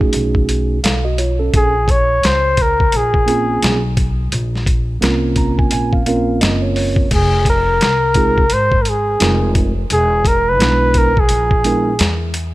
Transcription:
Already playing: A#1 A3 C#4 D#4 F#4 G#4
0.01 kick
0.13 B1, closed hi-hat
0.35 kick
0.49 closed hi-hat
0.84 B1 A4 F5, snare, closed hi-hat
1.04 F#4 D#5
1.18 F4 C#5, closed hi-hat
1.39 C#4 A4
1.54 A#1 G#4, kick, closed hi-hat
1.88 C#5, kick, closed hi-hat
2.23 C#2 C5, snare, closed hi-hat
2.57 kick, closed hi-hat
2.62 A#4
2.80 kick
2.92 A#1, closed hi-hat
2.97 G#4
3.14 kick
3.26 A#3 C4 C#4 F4 G#4, closed hi-hat
3.62 B1, snare, closed hi-hat
3.97 kick, closed hi-hat
4.32 A#1, closed hi-hat
4.56 snare
4.66 kick, closed hi-hat
5.01 C2 A#3 C4 C#4 F4 A#4, snare, closed hi-hat
5.36 A#5, kick, closed hi-hat
5.59 G#5, kick
5.71 A#1 G#5, closed hi-hat
5.93 F5, kick
6.06 A#3 C4 C#4 F4 A#4 F5, closed hi-hat
6.41 F#1 D#5, snare, closed hi-hat
6.62 C#5
6.76 C#5, open hi-hat
6.96 kick
7.11 F1 G#4, kick, closed hi-hat, crash
7.45 kick, closed hi-hat
7.50 A#4
7.81 C2, snare, closed hi-hat
8.14 G#3 C4 D#4 F4 G#4, kick, closed hi-hat
8.38 kick
8.50 G#1 C5, closed hi-hat
8.72 kick
8.82 A#4, closed hi-hat
8.89 G#4
9.20 F1 G#3 C4 D#4 F4 A#4, snare, closed hi-hat
9.55 kick, closed hi-hat
9.90 E1 G#4, closed hi-hat
10.25 A#4, kick, closed hi-hat
10.49 B4
10.59 B1 G#3 B3 D4 E4 B4, snare, closed hi-hat
10.94 A#4, kick, closed hi-hat
11.17 G#4, kick
11.29 A#1, closed hi-hat
11.51 kick
11.64 G#3 B3 D4 E4 A#4, closed hi-hat
11.99 E2, snare, closed hi-hat
12.34 closed hi-hat

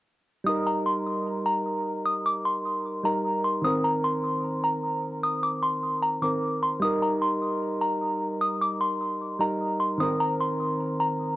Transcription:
0.44 G3 D#4 D#6
0.49 A#4
0.67 A#5
0.86 C6
1.46 A#5
2.05 D#6
2.26 D6
2.45 C6
3.03 G3 D#4 A#4 A#5
3.44 C6
3.62 D#3 C4 D#6
3.67 A#4
3.84 A#5
4.04 C6
4.64 A#5
5.23 D#6
5.43 D6
5.63 C6
6.03 A#5
6.22 D#3 C4 A#4 D6
6.63 C6
6.80 G3 D#4 D#6
6.84 A#4
7.02 A#5
7.22 C6
7.82 A#5
8.41 D#6
8.61 D6
8.81 C6
9.39 G3 D#4 A#4 A#5
9.80 C6
9.98 D#3 C4 D#6
10.02 A#4
10.20 A#5
10.40 C6
11.00 A#5

